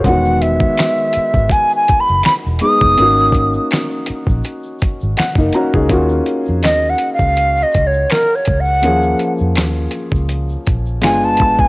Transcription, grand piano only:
0.00 0.24 G#4 medium
0.00 0.23 C#5 medium
0.04 2.58 D#3 medium
0.04 2.56 G#3 medium
0.04 2.57 B3 medium
0.09 2.59 F#4 medium
2.61 2.97 G#3 soft
2.61 2.98 B3 soft
2.61 2.98 D#4 soft
2.61 2.98 G#4 soft
2.97 5.13 A#3 medium
2.97 5.13 C#4 medium
2.97 5.14 D#4 medium
3.01 5.15 F#4 medium
5.17 5.51 F#5 medium
5.38 5.53 A#3 medium
5.38 5.53 D#4 medium
5.54 5.73 C#4 medium
5.54 5.73 F#4 medium
5.54 5.88 A#5 medium
5.74 6.09 D#4 medium
5.74 6.09 G#4 medium
5.89 8.78 A#3 medium
5.89 8.78 C#4 medium
5.89 8.79 F4 medium
5.89 8.80 F#4 medium
8.82 10.99 F3 medium
8.82 10.98 A#3 medium
8.82 10.99 C#4 medium
8.87 11.00 G#4 medium
11.02 11.68 G#3 medium
11.02 11.68 B3 medium
11.02 11.68 D4 medium
11.02 11.68 F4 medium

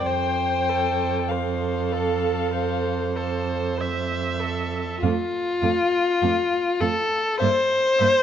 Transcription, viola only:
0.06 1.17 C5 medium
1.28 3.18 A4 medium
3.17 3.82 C5 soft
3.81 5.04 E5 soft
5.05 5.13 A3 medium
5.64 5.72 A3 soft
6.23 6.31 A3 medium
6.82 6.90 A3 soft
7.42 7.50 A#3 medium
8.00 8.08 A#3 soft

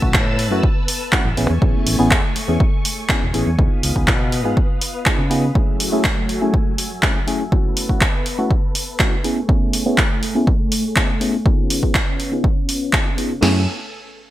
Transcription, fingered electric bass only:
0.02 0.16 B1 medium
0.14 0.51 A2 loud
0.51 0.60 F#2 medium
1.25 1.34 A1 loud
1.37 1.46 A1 medium
1.50 1.58 E2 medium
1.62 1.71 A1 loud
1.86 1.95 A1 medium
1.99 2.11 A1 medium
2.11 2.20 E2 loud
2.36 muted fingered electric bass stroke soft
2.48 2.57 E2 medium
3.22 3.31 E1 loud
3.34 3.43 A1 medium
3.46 3.55 E2 medium
3.59 3.68 C#2 loud
3.83 3.92 C#2 medium
3.96 4.09 C#2 medium
4.08 4.45 B2 loud
4.45 4.53 G#2 medium
5.19 5.50 C#3 medium
13.42 13.65 F#2 loud

